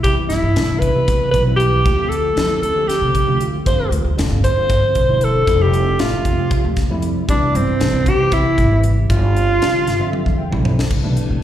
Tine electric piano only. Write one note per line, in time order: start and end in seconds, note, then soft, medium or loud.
0.05 0.48 C3 medium
0.05 0.48 E3 medium
0.05 0.49 G3 medium
0.05 0.49 B3 medium
0.05 0.49 E4 medium
0.55 0.88 C3 medium
0.55 0.89 E3 medium
0.55 0.89 G3 medium
0.55 0.90 B3 medium
0.55 0.90 D4 medium
0.95 1.39 C3 medium
0.95 1.39 E3 medium
0.95 1.39 G3 medium
0.95 1.40 B3 medium
0.95 1.40 E4 medium
1.46 1.79 E3 medium
1.46 1.80 G3 medium
1.46 1.80 B3 medium
1.46 1.79 C4 medium
1.46 1.80 E4 medium
1.85 2.29 D3 medium
1.85 2.29 F3 medium
1.85 2.30 A3 medium
1.85 2.30 C4 medium
1.85 2.30 F4 medium
2.36 2.70 D3 medium
2.36 2.70 F3 medium
2.36 2.70 A3 medium
2.36 2.70 C4 medium
2.36 2.71 E4 medium
2.75 3.19 D3 medium
2.75 3.20 F3 medium
2.75 3.20 A3 medium
2.75 3.20 C4 medium
2.75 3.21 G4 medium
3.26 3.60 D3 medium
3.26 3.60 F3 medium
3.26 3.60 A3 medium
3.26 3.61 C4 medium
3.26 3.61 F4 medium
3.65 4.10 D3 medium
3.65 4.11 F3 medium
3.65 4.11 G3 medium
3.65 4.11 C4 medium
3.65 4.11 F4 medium
4.17 4.51 D3 medium
4.17 4.51 F3 medium
4.17 4.51 G3 medium
4.17 4.51 C4 medium
4.17 4.51 F4 medium
4.56 5.00 D3 medium
4.56 5.01 F3 medium
4.56 5.01 G3 medium
4.56 5.01 C4 medium
4.56 5.01 F4 medium
5.09 5.42 D3 medium
5.09 5.42 F3 medium
5.09 5.42 G3 medium
5.09 5.42 C4 medium
5.09 5.43 E4 medium
5.46 5.91 C3 medium
5.46 5.91 F3 medium
5.46 5.91 G3 medium
5.46 5.92 A3 medium
5.46 5.92 E4 medium
5.98 6.32 C3 medium
5.98 6.32 F3 medium
5.98 6.32 G3 medium
5.98 6.33 A3 medium
5.98 6.33 E5 medium
6.37 6.82 C3 medium
6.37 6.82 F3 medium
6.37 6.82 G3 medium
6.37 6.82 A3 medium
6.37 6.83 G4 medium
6.89 7.23 C3 medium
6.89 7.23 F3 medium
6.89 7.23 G3 medium
6.89 7.23 A3 medium
6.89 7.24 E4 loud
7.28 7.72 C3 medium
7.28 7.73 E3 medium
7.28 7.73 G3 medium
7.28 7.73 B3 medium
7.28 7.73 E4 medium
7.80 8.13 C3 medium
7.80 8.14 E3 medium
7.80 8.14 G3 medium
7.80 8.14 B3 medium
7.80 8.14 D4 medium
8.18 8.63 C3 medium
8.18 8.63 E3 medium
8.18 8.63 G3 medium
8.18 8.63 B3 medium
8.18 8.64 E4 medium
8.71 9.04 C3 medium
8.71 9.04 E3 medium
8.71 9.04 G3 medium
8.71 9.05 B3 medium
8.71 9.05 E4 medium
9.09 9.54 D3 medium
9.09 9.54 F3 medium
9.09 9.54 G3 medium
9.09 9.54 C4 medium
9.09 9.55 F4 medium
9.62 9.95 D3 medium
9.62 9.95 F3 medium
9.62 9.95 G3 medium
9.62 9.95 C4 medium
9.62 9.96 G4 medium
9.99 10.44 D3 medium
9.99 10.44 F3 medium
9.99 10.44 G3 medium
9.99 10.45 C4 medium
9.99 10.45 E5 medium
10.38 10.63 G5 medium
10.50 10.84 D3 medium
10.50 10.84 F3 medium
10.50 10.85 G3 medium
10.50 10.85 C4 medium
10.50 10.85 E4 medium
10.64 10.89 C5 medium
11.02 11.43 C3 medium
11.02 11.43 E3 medium
11.02 11.43 A3 medium
11.02 11.43 B3 medium
11.02 11.43 D4 medium